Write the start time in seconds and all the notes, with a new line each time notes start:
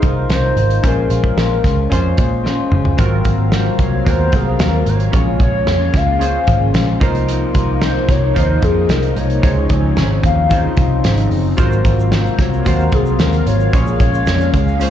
Already playing: D#4 F4 A#4 C5
0.02 C2 D#4 F4 A#4, kick, closed hi-hat
0.06 A#3
0.29 C2 C3 A#3 D#4 F4 C5, snare, closed hi-hat
0.56 G#1 D#4 F4, closed hi-hat
0.60 A#3
0.70 closed hi-hat
0.83 A#1 A#2 G#3 C#4 F4 G#4 A#4 C5, kick, closed hi-hat
1.09 A#1 C#4 F4, closed hi-hat
1.14 G#3
1.24 kick
1.37 A#1 A#2 G#3 C#4 F4, snare, closed hi-hat
1.63 C#2 G#3 C#4 F4, kick, snare, closed hi-hat
1.90 F2 A#2 G#3 C#4 F4 G#4 C5, kick, closed hi-hat
2.17 A#2 G#3 C#4 F4, kick, closed hi-hat
2.44 A#2 G#3 C#4 F4, snare
2.70 F#1 G#3 C#4 F4, mid tom
2.85 floor tom
2.97 G#1 G#2 C3 F#3 A#3 C4 F4 F#4 A#4 F5, kick, closed hi-hat
3.24 G#1 C4 F4, kick, closed hi-hat
3.28 F#3
3.52 G#2 F#3 C4 F4 C5, snare, closed hi-hat
3.78 C2 F#3 C4 F4 C#5, kick, closed hi-hat
4.04 D#2 G#2 F#3 B3 C4 F4 F#4 A#4 C5, kick, closed hi-hat
4.09 C4 F4
4.32 C2 C4 F4 G#4, kick, closed hi-hat
4.36 F#3
4.59 D#2 G#2 F#3 C4 F4 A#4, snare, closed hi-hat
4.86 G#1 F#3 C4 F4 C#5, closed hi-hat
5.00 closed hi-hat
5.12 A#1 A#2 C#3 G#3 C#4 F4 G#4 C#5, kick, closed hi-hat
5.39 A#1 G#3 C#4 F4 C#5, kick, closed hi-hat
5.66 F2 A#2 G#3 C#4 F4, snare, closed hi-hat
5.93 C#2 G#3 C#4 F4 F5, kick, snare, closed hi-hat
6.19 A#2 G#3 C#4 F4 G#4 C5, closed hi-hat
6.24 F4
6.47 G#1 G#3 C#4 F4, kick, closed hi-hat
6.74 A#1 A#2 G#3 C#4 F4, snare, closed hi-hat
7.00 C2 C3 F3 A#3 D#4 F4 A#4 C5, kick, closed hi-hat
7.04 F3
7.15 closed hi-hat
7.27 C3 F3 A#3 D#4, closed hi-hat
7.54 C2 A#3 D#4, kick, closed hi-hat
7.59 F3
7.81 C3 F3 A#3 D#4 C5, snare, closed hi-hat
8.09 C2 F3 A#3 D#4 C#5, kick, snare, closed hi-hat
8.35 D#2 C3 F3 A#3 D#4 F4 A#4 C5, kick, closed hi-hat
8.39 D#4
8.62 F2 A#3 D#4 G#4, kick, closed hi-hat
8.66 F3
8.89 C2 C3 F3 A#3 D#4 A#4, snare, closed hi-hat
9.03 closed hi-hat
9.15 C2 F3 A#3 D#4 C#5, closed hi-hat
9.30 closed hi-hat
9.42 C#2 C3 C#3 F3 C4 D#4 F4 G#4 C#5, kick, closed hi-hat
9.69 C#2 F3 C4 D#4 C#5, kick, closed hi-hat
9.96 G#1 C#3 F3 C4 D#4, snare, closed hi-hat
10.23 D#2 F3 C4 D#4 F5, kick, closed hi-hat
10.49 C#3 F3 C4 D#4 F4 G#4 C5, kick, closed hi-hat
10.54 D#4
10.76 C2 F3 C4 D#4, kick, closed hi-hat
11.03 G#1 C#3 F3 C4 D#4, snare, closed hi-hat
11.17 closed hi-hat
11.30 F#1 F3 C4 D#4, open hi-hat
11.57 G#1 G#2 C3 F#3 A#3 C4 F4 F#4 A#4 C5 F5, kick, closed hi-hat, shaker
11.72 shaker
11.85 G#1 C4 F4, kick, closed hi-hat, shaker
11.89 F#3
12.00 shaker
12.12 G#2 F#3 C4 F4 C5, snare, closed hi-hat, shaker
12.26 shaker
12.38 C2 F#3 C4 F4 C#5, kick, snare, closed hi-hat
12.53 shaker
12.65 D#2 G#2 F#3 C4 F4 F#4 A#4 C5, kick, closed hi-hat, shaker
12.69 F4
12.80 shaker
12.92 C2 C4 F4 G#4, kick, closed hi-hat
12.96 F#3
13.06 shaker
13.19 D#2 G#2 F#3 C4 F4 A#4, snare, closed hi-hat, shaker
13.33 closed hi-hat, shaker
13.46 G#1 F#3 C4 F4 C#5, closed hi-hat, shaker
13.60 shaker
13.72 A#1 A#2 C#3 G#3 C#4 F4 G#4 C#5, kick, closed hi-hat, shaker
13.87 shaker
13.99 A#1 G#3 C#4 F4 C#5, kick, closed hi-hat, shaker
14.14 shaker
14.26 F2 A#2 G#3 C#4 F4, snare, closed hi-hat, shaker
14.41 shaker
14.53 C#2 G#3 C#4 F4 F5, kick, closed hi-hat
14.68 shaker
14.79 A#2 G#3 C#4 F4 G#4 C5, closed hi-hat, shaker
14.84 F4